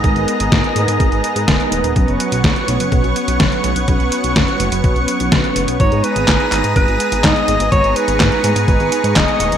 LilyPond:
<<
  \new Staff \with { instrumentName = "Analog synth pad" } { \time 4/4 \key gis \minor \tempo 4 = 125 << { <b ais''>1 | <cis'' cis'''>1~ | <cis'' cis'''>1 | dis'''1 |
cis'''1 | } \\ { <gis' dis''>1 | fis''1~ | fis''1 | <gis' ais''>1~ |
<gis' ais''>1 | } >> }
  \new Staff \with { instrumentName = "Alto saxophone" } { \time 4/4 \key gis \minor r1 | r1 | r1 | cis''8 b'4. b'4 dis''4 |
cis''8 b'4. b'4 dis''4 | }
  \new Staff \with { instrumentName = "Analog polysynth" } { \time 4/4 \key gis \minor <gis b dis' ais'>4. <gis b dis' ais'>2~ <gis b dis' ais'>8 | <fis b cis' b'>4. <fis b cis' b'>2~ <fis b cis' b'>8 | <fis b cis' b'>4. <fis b cis' b'>2~ <fis b cis' b'>8 | <gis b dis' ais''>4. <gis b dis' ais''>2~ <gis b dis' ais''>8 |
<gis b dis' ais''>4. <gis b dis' ais''>2~ <gis b dis' ais''>8 | }
  \new Staff \with { instrumentName = "Analog synth bass" } { \clef bass \time 4/4 \key gis \minor gis,,16 gis,,16 r16 gis,,16 gis,16 r16 gis,16 gis,16 gis,,16 gis,,16 r16 gis,16 dis,,16 r16 dis,,16 dis,,16 | b,,16 fis,,16 r16 b,,16 b,,16 r16 b,,16 fis,,16 b,,16 b,,16 r16 b,,16 fis,,16 r16 b,,16 b,,16 | b,,16 b,,16 r16 b,,16 fis,,16 r16 fis,,16 fis,,16 b,,16 b,,16 r16 b,,16 b,,16 r16 fis,,16 b,,16 | gis,,16 gis,16 r16 gis,,16 gis,,16 r16 gis,,16 gis,16 gis,,16 gis,,16 r16 gis,,16 gis,16 r16 gis,,16 gis,,16 |
gis,,16 gis,,16 r16 gis,,16 gis,16 r16 gis,16 gis,16 gis,,16 gis,,16 r16 gis,16 dis,,16 r16 dis,,16 dis,,16 | }
  \new DrumStaff \with { instrumentName = "Drums" } \drummode { \time 4/4 <hh bd>16 hh16 hh16 hh16 <hh bd sn>16 hh16 hh16 hh16 <hh bd>16 hh16 hh16 hh16 <hh bd sn>16 hh16 hh16 hh16 | <hh bd>16 hh16 hh16 hh16 <hh bd sn>16 hh16 hh16 hh16 <hh bd>16 hh16 hh16 hh16 <hh bd sn>16 hh16 hh16 hh16 | <hh bd>16 hh16 hh16 hh16 <hh bd sn>16 hh16 hh16 hh16 <hh bd>16 hh16 hh16 hh16 <hh bd sn>16 hh16 hh16 hh16 | <hh bd>16 hh16 hh16 hh16 <hc hh bd sn>16 hh16 <hc hh>16 hh16 <hh bd>16 hh16 hh16 hh16 <hc hh bd sn>16 hh16 hh16 hh16 |
<hh bd>16 hh16 hh16 hh16 <hc hh bd sn>16 hh16 hh16 hh16 <hh bd>16 hh16 hh16 hh16 <hc hh bd sn>16 hh16 hh16 hh16 | }
>>